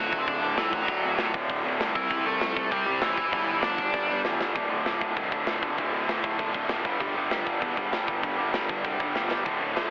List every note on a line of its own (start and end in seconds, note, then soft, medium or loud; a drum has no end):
0.00 0.41 D2 medium
0.00 0.42 A2 loud
0.00 0.40 D3 loud
0.00 0.19 F#3 medium
0.00 0.20 F#4 loud
0.13 0.25 D1 medium
0.13 kick medium
0.18 0.26 C4 medium
0.28 0.41 D1 loud
0.28 0.58 D4 loud
0.28 0.56 D5 medium
0.28 kick loud
0.28 open hi-hat medium
0.41 0.55 D1 medium
0.41 0.55 D2 medium
0.41 0.56 A2 medium
0.41 0.56 D3 medium
0.56 0.71 C2 loud
0.56 0.85 D2 medium
0.56 0.86 A2 medium
0.56 0.87 D3 medium
0.56 0.73 E3 medium
0.56 0.73 E4 loud
0.56 snare loud
0.56 open hi-hat medium
0.73 0.86 A1 medium
0.73 1.31 F#3 medium
0.73 1.31 F#4 medium
0.73 kick medium
0.86 1.01 D1 loud
0.86 1.63 D2 loud
0.86 1.63 A2 loud
0.86 1.62 D3 loud
0.86 kick loud
0.86 open hi-hat medium
1.05 1.17 D1 loud
1.18 1.31 D1 loud
1.18 snare loud
1.18 open hi-hat medium
1.34 1.47 D1 loud
1.34 kick loud
1.49 1.62 D1 loud
1.49 kick medium
1.49 open hi-hat medium
1.63 1.77 D1 medium
1.63 1.77 D2 medium
1.63 1.78 A2 medium
1.63 1.78 D3 loud
1.78 1.92 C2 loud
1.78 1.93 D2 medium
1.78 1.94 A2 medium
1.78 1.94 D3 medium
1.78 snare loud
1.78 open hi-hat medium
1.94 2.08 C2 loud
1.94 2.70 C3 medium
1.94 2.24 E3 medium
1.94 2.71 G3 loud
1.94 2.71 C4 loud
1.94 2.27 E4 loud
1.94 kick medium
2.10 2.23 C2 medium
2.10 kick loud
2.10 open hi-hat medium
2.25 2.38 C2 loud
2.25 2.69 A3 medium
2.25 2.71 A4 loud
2.40 2.53 C2 medium
2.40 snare loud
2.40 open hi-hat medium
2.56 2.69 C2 loud
2.56 kick medium
2.71 2.85 C2 loud
2.71 2.86 C3 medium
2.71 3.00 G3 medium
2.71 2.86 G3 medium
2.71 2.85 C4 loud
2.71 3.02 G4 loud
2.71 kick loud
2.71 open hi-hat medium
2.86 3.00 C2 medium
2.86 3.17 C3 medium
2.86 3.17 G3 medium
2.86 3.16 C4 medium
3.01 3.15 A1 medium
3.01 3.31 E3 medium
3.01 3.31 E4 loud
3.01 snare loud
3.01 open hi-hat medium
3.18 3.30 F#1 loud
3.18 kick loud
3.32 3.46 G1 loud
3.32 4.08 G2 loud
3.32 4.08 D3 loud
3.32 3.62 E3 medium
3.32 4.07 G3 loud
3.32 3.62 E4 medium
3.32 kick loud
3.32 open hi-hat medium
3.47 3.61 G1 medium
3.62 3.76 G1 loud
3.62 4.20 D4 medium
3.62 4.20 D5 medium
3.62 snare loud
3.62 open hi-hat medium
3.78 3.92 G1 medium
3.78 kick loud
3.94 4.07 G1 medium
3.94 kick loud
3.94 open hi-hat medium
4.08 4.23 G1 loud
4.08 4.23 G2 medium
4.08 4.24 D3 medium
4.08 4.23 G3 medium
4.24 4.38 E2 medium
4.24 4.53 G2 medium
4.24 4.53 D3 medium
4.24 4.54 G3 medium
4.24 snare medium
4.40 4.53 D1 medium
4.40 snare medium
4.54 4.68 D1 medium
4.54 4.70 D2 medium
4.54 4.68 A2 loud
4.54 4.69 D3 loud
4.54 kick loud
4.54 crash medium
4.69 4.83 D1 medium
4.69 4.83 D2 medium
4.69 4.83 A2 medium
4.69 4.84 D3 medium
4.84 5.11 D1 medium
4.84 4.99 D2 medium
4.84 4.99 A2 medium
4.84 4.99 D3 loud
4.84 snare loud
4.84 crash medium
5.00 5.14 D2 medium
5.00 5.14 A2 medium
5.00 5.14 D3 medium
5.00 kick medium
5.15 5.29 C2 medium
5.15 5.31 D2 medium
5.15 5.31 A2 medium
5.15 5.30 D3 loud
5.15 kick medium
5.15 crash medium
5.31 5.45 D1 medium
5.31 5.46 D2 medium
5.31 5.46 A2 medium
5.31 5.46 D3 loud
5.31 kick medium
5.47 5.60 D1 medium
5.47 5.62 D2 medium
5.47 5.61 A2 medium
5.47 5.61 D3 medium
5.47 snare loud
5.47 crash medium
5.62 5.75 D1 medium
5.62 5.77 D2 medium
5.62 5.77 A2 medium
5.62 5.77 D3 medium
5.62 kick medium
5.78 5.90 D1 medium
5.78 5.92 D2 loud
5.78 5.92 A2 loud
5.78 5.92 D3 loud
5.78 kick loud
5.78 crash medium
5.93 6.06 D1 medium
5.93 6.08 D2 medium
5.93 6.08 A2 medium
5.93 6.09 D3 medium
6.08 6.21 D1 medium
6.08 6.23 D2 medium
6.08 6.22 A2 medium
6.08 6.22 D3 loud
6.08 snare loud
6.08 crash medium
6.23 6.36 D1 medium
6.23 6.37 D2 medium
6.23 6.38 A2 medium
6.23 6.38 D3 medium
6.23 kick medium
6.38 6.52 G1 loud
6.38 6.53 D2 medium
6.38 6.53 A2 loud
6.38 6.52 D3 loud
6.38 kick medium
6.38 crash medium
6.54 6.67 D1 medium
6.54 6.68 D2 medium
6.54 6.69 A2 medium
6.54 6.69 D3 medium
6.54 kick medium
6.69 6.85 D1 medium
6.69 6.84 D2 medium
6.69 6.84 A2 medium
6.69 6.84 D3 medium
6.69 snare loud
6.69 crash medium
6.85 6.98 G1 medium
6.85 7.00 G2 medium
6.85 6.99 D3 loud
6.85 6.99 G3 loud
6.85 kick medium
7.00 7.13 G1 medium
7.00 7.15 G2 medium
7.00 7.15 D3 medium
7.00 7.16 G3 loud
7.00 kick loud
7.00 crash medium
7.15 7.28 G1 medium
7.15 7.31 G2 medium
7.15 7.30 D3 medium
7.15 7.30 G3 loud
7.30 7.56 G1 medium
7.30 7.44 G2 medium
7.30 7.45 D3 medium
7.30 7.45 G3 loud
7.30 snare loud
7.30 crash medium
7.46 7.60 G2 medium
7.46 7.60 D3 medium
7.46 7.59 G3 loud
7.46 kick medium
7.60 7.74 E2 medium
7.60 7.75 G2 medium
7.60 7.75 D3 loud
7.60 7.76 G3 loud
7.60 kick medium
7.60 crash medium
7.76 7.90 G1 medium
7.76 7.91 G2 medium
7.76 7.91 D3 medium
7.76 7.90 G3 medium
7.76 kick medium
7.91 8.05 G1 medium
7.91 8.05 G2 medium
7.91 8.06 D3 medium
7.91 8.06 G3 medium
7.91 snare loud
7.91 crash medium
8.07 8.21 G1 medium
8.07 8.22 G2 medium
8.07 8.21 D3 medium
8.07 8.21 G3 medium
8.07 kick medium
8.22 8.36 G1 medium
8.22 8.36 G2 medium
8.22 8.36 D3 medium
8.22 8.37 G3 loud
8.22 kick loud
8.22 crash medium
8.37 8.51 G1 medium
8.37 8.52 G2 medium
8.37 8.52 D3 medium
8.37 8.51 G3 loud
8.52 8.67 G1 medium
8.52 8.68 G2 medium
8.52 8.69 D3 medium
8.52 8.69 G3 loud
8.52 snare loud
8.52 crash medium
8.69 8.81 G1 medium
8.69 8.83 G2 medium
8.69 8.83 D3 medium
8.69 8.83 G3 medium
8.69 kick medium
8.84 8.97 C2 medium
8.84 8.98 G2 medium
8.84 8.98 D3 loud
8.84 8.98 G3 loud
8.84 kick medium
8.84 crash medium
8.99 9.12 G1 medium
8.99 9.14 G2 medium
8.99 9.13 D3 medium
8.99 9.13 G3 medium
8.99 kick medium
9.15 9.28 G1 medium
9.15 9.27 G2 medium
9.15 9.28 D3 medium
9.15 9.28 G3 medium
9.15 snare medium
9.28 9.43 G1 medium
9.28 9.44 G2 medium
9.28 9.44 D3 medium
9.28 9.44 G3 medium
9.28 snare loud
9.44 9.58 D1 medium
9.44 9.60 D2 medium
9.44 9.59 A2 loud
9.44 9.59 D3 loud
9.44 kick loud
9.44 crash medium
9.60 9.73 D1 medium
9.60 9.74 D2 medium
9.60 9.74 A2 medium
9.60 9.75 D3 medium
9.74 9.90 D1 medium
9.74 9.89 D2 medium
9.74 9.89 A2 medium
9.74 9.89 D3 medium
9.74 snare loud
9.74 crash medium